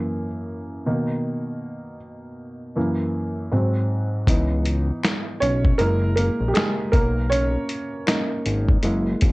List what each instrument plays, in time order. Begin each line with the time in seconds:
Already playing: upright piano F#2 E3 A#3
0.86 upright piano B2 D#3 A#3
2.75 upright piano F#2 E3 A#3
3.52 upright piano G#2 F#3 C4
4.27 analog synth bass C#2, upright piano E3 B3 D#4, kick, closed hi-hat
4.65 closed hi-hat
5.03 finger snap, snare, closed hi-hat
5.40 analog synth bass B1, upright piano C#4 C#5, closed hi-hat
5.65 kick
5.78 analog synth bass F#1, upright piano G#3 A#3 E4 A#4, closed hi-hat
6.16 upright piano A#3 A#4, closed hi-hat
6.41 analog synth bass A#1
6.48 upright piano G4
6.54 upright piano G#3 G#4, finger snap, snare, closed hi-hat
6.92 analog synth bass B1, upright piano A#3 A#4, kick, closed hi-hat
7.30 upright piano C#4 C#5, closed hi-hat
7.69 closed hi-hat
8.07 upright piano A#3 C#4 D#4, finger snap, snare, closed hi-hat
8.46 analog synth bass G#1, closed hi-hat
8.69 kick
8.83 analog synth bass F#1, upright piano G#3 A#3 E4, closed hi-hat
9.21 analog synth bass G#1, kick, closed hi-hat